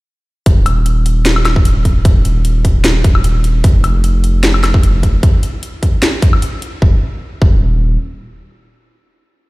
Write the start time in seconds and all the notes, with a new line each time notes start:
0.46 D#1, kick, closed hi-hat
0.66 closed hi-hat, high woodblock
0.86 closed hi-hat
1.06 closed hi-hat
1.26 snare, closed hi-hat
1.36 high woodblock
1.45 snare, closed hi-hat, high woodblock
1.56 kick
1.65 closed hi-hat
1.85 kick, closed hi-hat
2.05 kick, closed hi-hat
2.25 closed hi-hat
2.45 closed hi-hat
2.65 kick, closed hi-hat
2.84 snare, closed hi-hat
3.04 kick, closed hi-hat
3.15 high woodblock
3.24 closed hi-hat
3.44 closed hi-hat
3.64 F1, kick, closed hi-hat
3.84 closed hi-hat, high woodblock
4.04 closed hi-hat
4.24 closed hi-hat
4.44 snare, closed hi-hat
4.54 high woodblock
4.64 snare, closed hi-hat, high woodblock
4.74 kick
4.83 closed hi-hat
5.03 kick, closed hi-hat
5.23 kick, closed hi-hat
5.43 closed hi-hat
5.63 closed hi-hat
5.83 kick, closed hi-hat
6.03 snare, closed hi-hat
6.22 kick, closed hi-hat
6.33 high woodblock
6.42 closed hi-hat
6.62 closed hi-hat
6.82 D#1, kick
7.42 D#1, kick